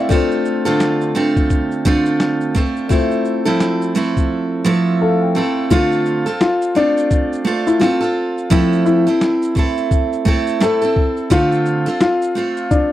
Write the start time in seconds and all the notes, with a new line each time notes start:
Already playing: E4 A4 D5 E5 F5 G5 A5
0.09 A3 C4 D4 F4 A4, kick, shaker
0.13 C5
0.32 shaker
0.45 shaker
0.65 D3 A3 C4 F4 A4, shaker
0.80 snare, shaker
1.01 shaker
1.15 D3 A3 C4 F4 A4
1.36 kick, shaker
1.50 kick, shaker
1.71 shaker
1.85 D3 A3 C4 F4 A4, kick
2.06 shaker
2.20 snare, shaker
2.41 shaker
2.55 A3 C4 F4 A4, kick, shaker
2.76 shaker
2.89 A3 C4 E4 F4 A4, kick, shaker
2.93 C5
3.11 shaker
3.25 shaker
3.45 F3 A3 C4 E4 A4, snare, shaker
3.60 snare, shaker
3.82 shaker
3.95 F3 A3 C4 E4 A4, shaker
4.17 kick, shaker
4.65 F3 A3 C4 E4 A4
5.01 A4 F5
5.22 G5
5.35 A3 C4 E4 A4 A5
5.70 D3 A3 C4 F4 A4, kick, shaker
5.92 shaker
6.06 shaker
6.26 C4 F4 A4, snare, shaker
6.41 F4, snare, shaker
6.62 shaker
6.75 A3 C4 D4 F4 A4, shaker
6.97 shaker
7.11 kick, shaker
7.33 shaker
7.45 A3 C4 F4 A4
7.67 E4, shaker
7.80 A3 C4 F4 A4, snare, shaker
8.01 C4 F4 A4, shaker
8.38 shaker
8.50 F3 A3 C4 E4 A4, kick, shaker
8.72 shaker
8.86 E4, shaker
9.07 C4 E4 A4, snare, shaker
9.21 snare, shaker
9.42 shaker
9.55 A3 C4 E4 A4, kick, shaker
9.77 shaker
9.91 kick, shaker
10.13 shaker
10.25 A3 C4 E4 A4, kick
10.47 shaker
10.60 A3 C4 E4 A4, snare, shaker
10.82 C4 E4 A4, shaker
10.96 kick
11.17 shaker
11.30 D3 A3 C4 F4 A4, kick, shaker
11.52 shaker
11.66 shaker
11.86 C4 F4 A4, snare, shaker
12.01 F4, snare, shaker
12.22 shaker
12.35 A3 C4 F4 A4, shaker
12.57 shaker
12.71 D4, kick, shaker